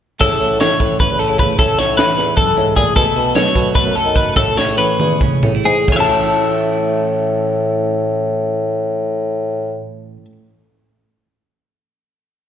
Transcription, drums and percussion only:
0.21 kick, closed hi-hat
0.41 closed hi-hat
0.60 snare, closed hi-hat
0.80 kick, closed hi-hat
1.00 kick, closed hi-hat
1.20 closed hi-hat
1.39 kick, closed hi-hat
1.59 kick, closed hi-hat
1.79 snare, closed hi-hat
1.98 snare, closed hi-hat
2.17 snare, closed hi-hat
2.37 kick, closed hi-hat
2.57 closed hi-hat
2.76 kick, closed hi-hat
2.96 kick, closed hi-hat
3.16 closed hi-hat
3.35 snare, closed hi-hat
3.55 kick, closed hi-hat
3.75 kick, closed hi-hat
3.95 closed hi-hat
4.16 kick, closed hi-hat
4.36 kick, closed hi-hat
4.59 snare
5.00 high tom
5.21 kick, mid tom
5.43 mid tom
5.88 kick, crash

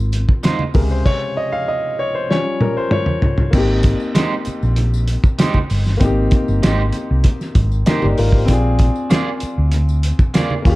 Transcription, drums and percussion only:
0.12 closed hi-hat, tambourine
0.29 kick
0.43 snare, closed hi-hat, tambourine, high conga
0.59 high conga
0.74 kick, open hi-hat, tambourine
0.89 tambourine
1.06 kick, crash
2.31 snare
2.61 high tom
2.91 mid tom
3.06 mid tom
3.22 floor tom
3.38 floor tom
3.53 kick, crash, tambourine, muted conga
3.83 kick, closed hi-hat, tambourine, muted conga
4.00 tambourine
4.15 snare, closed hi-hat, tambourine, high conga
4.45 closed hi-hat, tambourine, muted conga
4.63 tambourine
4.76 closed hi-hat, muted conga
4.94 tambourine
5.08 closed hi-hat, tambourine
5.24 kick, tambourine
5.39 snare, closed hi-hat, tambourine, high conga
5.54 kick, high conga
5.70 open hi-hat, tambourine
5.86 snare, tambourine
6.00 kick, closed hi-hat, tambourine, muted conga
6.31 kick, closed hi-hat, tambourine, muted conga
6.48 tambourine
6.63 snare, closed hi-hat, tambourine, high conga
6.93 closed hi-hat, tambourine, muted conga
7.24 kick, closed hi-hat, muted conga
7.41 snare, tambourine
7.55 kick, closed hi-hat, tambourine, low conga
7.72 tambourine
7.86 snare, closed hi-hat, tambourine, high conga
8.02 high conga
8.18 open hi-hat, tambourine
8.32 kick
8.48 kick, closed hi-hat, tambourine, muted conga
8.79 kick, closed hi-hat, tambourine, muted conga
8.96 tambourine
9.10 snare, closed hi-hat, tambourine, high conga
9.40 closed hi-hat, tambourine
9.72 closed hi-hat, muted conga
9.89 tambourine
10.03 closed hi-hat, tambourine
10.19 kick, tambourine
10.34 snare, closed hi-hat, tambourine, high conga
10.50 high conga
10.65 kick, open hi-hat, tambourine

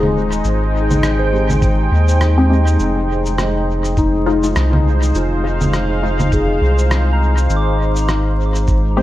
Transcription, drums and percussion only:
0.03 low conga
0.32 cabasa
0.44 cabasa
0.91 low conga, cabasa
1.03 cross-stick, cabasa
1.50 low conga, cabasa
1.62 kick, cabasa
2.08 cabasa
2.21 cross-stick, cabasa
2.67 cabasa
2.80 cabasa
3.26 cabasa
3.38 cross-stick, cabasa
3.85 cabasa
3.97 kick, cabasa
4.43 cabasa
4.56 cross-stick, cabasa
4.73 low conga
5.03 cabasa
5.15 cabasa
5.61 low conga, cabasa
5.73 cross-stick, cabasa
6.20 low conga, cabasa
6.32 kick, cabasa
6.79 cabasa
6.91 cross-stick, cabasa
7.37 cabasa
7.50 cabasa
7.96 cabasa
8.09 cross-stick, cabasa
8.55 cabasa
8.67 kick, cabasa

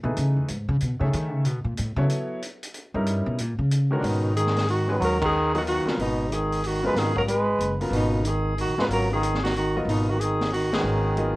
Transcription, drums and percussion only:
0.17 closed hi-hat
0.48 closed hi-hat
0.80 closed hi-hat
1.13 closed hi-hat
1.45 closed hi-hat
1.77 closed hi-hat
2.10 closed hi-hat
2.42 closed hi-hat
2.63 closed hi-hat
2.74 closed hi-hat
3.06 closed hi-hat
3.38 closed hi-hat
3.71 closed hi-hat
4.04 open hi-hat
4.37 closed hi-hat
4.47 snare
4.56 snare, open hi-hat
4.68 open hi-hat
5.02 open hi-hat
5.22 kick, ride
5.55 open hi-hat
5.67 open hi-hat
5.87 snare
5.99 open hi-hat
6.32 closed hi-hat
6.52 open hi-hat
6.64 open hi-hat
6.96 snare, open hi-hat
7.16 kick
7.28 closed hi-hat
7.60 closed hi-hat
7.81 open hi-hat
7.93 open hi-hat
8.25 closed hi-hat
8.58 open hi-hat
8.79 snare
8.90 open hi-hat
9.23 closed hi-hat
9.34 snare
9.45 snare, open hi-hat
9.56 open hi-hat
9.89 open hi-hat
10.21 closed hi-hat
10.41 snare, open hi-hat
10.54 open hi-hat
10.73 snare, ride
11.17 closed hi-hat

